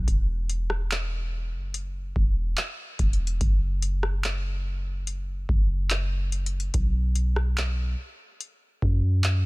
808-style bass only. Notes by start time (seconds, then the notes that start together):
0.08 E1
1.53 F#1
2.16 E1
2.99 E1
3.41 F#1
5.49 F#1
6.74 B1
8.82 F#2